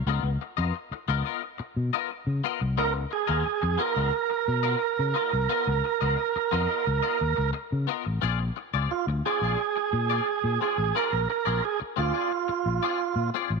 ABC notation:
X:1
M:4/4
L:1/16
Q:1/4=88
K:Bbmix
V:1 name="Tonewheel organ"
z16 | B2 A4 B8- B2- | B12 z4 | z4 F2 A8 A2 |
B2 B2 A2 F8 z2 |]
V:2 name="Clean electric guitar"
[_CFBe] z2 [CFBe] z2 [CFBe] [CFBe] z3 [CFBe] z2 [CFBe] z | [_CFBe] z2 [CFBe] z2 [CFBe] [CFBe] z3 [CFBe] z2 [CFBe] z | [_CFBe] z2 [CFBe] z2 [CFBe] [CFBe] z [CFBe] z4 [CFBe] z | [CFAd] z2 [CFAd] z2 [CFAd] [CFAd] z3 [CFAd] z2 [CFAd] z |
[CFAd] z2 [CFAd] z2 [CFAd] [CFAd] z3 [CFAd] z2 [CFAd] z |]
V:3 name="Fingered electric bass" clef=bass
_D,, D,, z F,, z2 D,, z3 _C, z2 _D, z =C,, | _D,,2 z E,, z F,, z D,, z2 _C,2 z _D, z =C,, | z _D,, z D,, z2 F,, z D,, z E,, D,, z _D, z =A,,, | B,,,2 z _D,, z =D,, z B,,, z2 B,,2 z B,, z =A,,, |
z B,,, z B,,, z2 D,, z3 B,,, z2 B,, z =A,,, |]